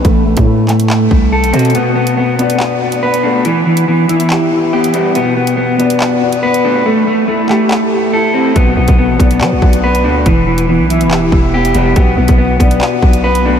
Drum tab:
HH |x-----x-----x-x-----------x-xxxx|x-----x-----x-x-------x---x-----|x-----x-----x-x-----------x-x---|x-----x-----x-x-------x---x-----|
CP |------------x---x---------------|----------------x---------------|----------------x---------------|----------------x---------------|
BD |o-----o-------------o-----------|--------------------------------|--------------------------------|--------------------------------|

HH |--------------------------------|x-----x-----x-x-------x---x-----|x-----x-----x-x-----------x-x---|x-----x-----x-x-------x---x-----|
CP |------------x---x---------------|----------------x---------------|----------------x---------------|----------------x---------------|
BD |--------------------------------|o-----o-----o-------o-----------|o-------------------o-----------|o-----o-----o-------o-----------|